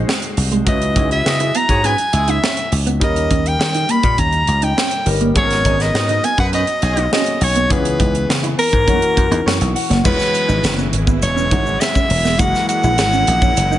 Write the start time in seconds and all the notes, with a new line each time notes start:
Already playing: G#3 D#4 F#4 C5
0.07 C4, snare
0.22 closed hi-hat
0.37 C2, muted clean electric guitar stroke, open hi-hat
0.52 G#3, closed hi-hat
0.65 C#2 F#3 C#4 E4 B4 D#5, kick, closed hi-hat
0.81 muted clean electric guitar stroke, closed hi-hat
0.95 C#2 G#3 D#4 E4 G#4, kick, closed hi-hat
1.10 F#4 G#4 B4 E5, closed hi-hat
1.24 C#3 G#4 B4 D#5, muted clean electric guitar stroke, snare
1.40 E4 G#4 B4 D#5, closed hi-hat
1.55 B3 A#5, closed hi-hat
1.69 G#2 F#4 G#4 C#5, kick, closed hi-hat
1.84 C#4 F#4 G#4 B4 G#5, closed hi-hat
1.98 muted clean electric guitar stroke, closed hi-hat
2.13 C#2 G#3 E4 G#4, closed hi-hat
2.28 D#4 E5, closed hi-hat
2.43 C#4, snare
2.57 closed hi-hat
2.72 C#2, muted clean electric guitar stroke, open hi-hat
2.86 B3, closed hi-hat
3.00 D#2 G3 C#4 D#4 A#4 D#5, kick, closed hi-hat
3.16 muted clean electric guitar stroke, closed hi-hat
3.31 D#2 C#4, kick, closed hi-hat
3.46 G5, closed hi-hat
3.59 D#3, muted clean electric guitar stroke, snare
3.74 D#4, closed hi-hat
3.89 A#3 B5, closed hi-hat
4.03 A#2, kick, closed hi-hat
4.18 D#2 C#4 A#5, kick, closed hi-hat
4.32 muted clean electric guitar stroke, closed hi-hat
4.47 C#2, closed hi-hat
4.62 D#4 G5, closed hi-hat
4.77 C#4, snare
4.91 closed hi-hat
5.06 G1 G3 C#4 D#4 A#4, muted clean electric guitar stroke, open hi-hat
5.21 A#3, closed hi-hat
5.34 G#1 F#3 G#3 B3 C#4 G#4 C#5, kick, closed hi-hat
5.43 A#4
5.50 muted clean electric guitar stroke, snare, closed hi-hat
5.65 G#1 C#4 D#4 G#4, kick, closed hi-hat
5.79 D#4 F#4 B4 D#5, snare, closed hi-hat
5.94 G#2 D#4 B4 D#5, muted clean electric guitar stroke, snare
6.08 D#4 B4 D#5, closed hi-hat
6.24 B3 G#5, closed hi-hat
6.38 F#2 D#4 F#4 B4 F#5, kick, closed hi-hat
6.52 C#4 D#4 F#4 B4 D#5, closed hi-hat
6.67 muted clean electric guitar stroke, closed hi-hat
6.82 B1 C#4 D#4 G#4, closed hi-hat
6.97 D#4, closed hi-hat
7.11 F#3 A#3 C#4 G#4 D#5, snare
7.18 B3
7.26 closed hi-hat
7.41 B1 C#5, muted clean electric guitar stroke, open hi-hat
7.55 B3, closed hi-hat
7.69 C#2 E3 B3 C#4 G#4 B4, kick, closed hi-hat
7.85 muted clean electric guitar stroke, closed hi-hat
7.99 C#2 D#4, kick, closed hi-hat
8.15 closed hi-hat
8.29 C#3, muted clean electric guitar stroke, snare
8.43 E4, closed hi-hat
8.58 B3 A#4, open hi-hat
8.73 G#2, kick, closed hi-hat
8.87 F#2 E3 G#3 C#4 F#4, kick, closed hi-hat
8.94 A#3
9.02 muted clean electric guitar stroke, closed hi-hat
9.17 F#2, kick, closed hi-hat
9.31 E2 D#4, closed hi-hat
9.46 F#2 C#4 C#6, snare
9.61 B1, closed hi-hat
9.75 F#5, muted clean electric guitar stroke, open hi-hat
9.90 F#1 A#3, snare, closed hi-hat
10.04 E1 C#3 E3 F#3 G#3 B3 C#4 E4 F4 B4, kick, crash, shaker
10.12 F#4
10.20 snare, shaker
10.34 muted clean electric guitar stroke, closed hi-hat, shaker
10.48 G#1 D#4, shaker
10.63 F#1, snare, closed hi-hat, shaker
10.77 B3, shaker
10.93 G#1, muted clean electric guitar stroke, closed hi-hat
11.07 B3, kick, shaker
11.22 E1 C#5, muted clean electric guitar stroke, closed hi-hat, shaker
11.36 C#4, shaker
11.51 G#1 E3 G#3 C#4 D#4 F#4, kick, closed hi-hat
11.66 shaker
11.80 E5, snare, closed hi-hat, shaker
11.95 C#4, kick, shaker
12.10 E1, muted clean electric guitar stroke, open hi-hat
12.25 B3, snare, shaker
12.38 F#1 C#3 E3 G#3 A#3 E4 F#4 A#4 F#5, kick, closed hi-hat, shaker
12.55 snare, shaker
12.69 F#5, muted clean electric guitar stroke, closed hi-hat, shaker
12.83 A#1 E4, shaker
12.98 G#1, snare, closed hi-hat, shaker
13.13 C#4, shaker
13.27 A#1, muted clean electric guitar stroke, closed hi-hat
13.42 C#4, kick, shaker
13.57 F#1, muted clean electric guitar stroke, closed hi-hat, shaker
13.71 D#4, shaker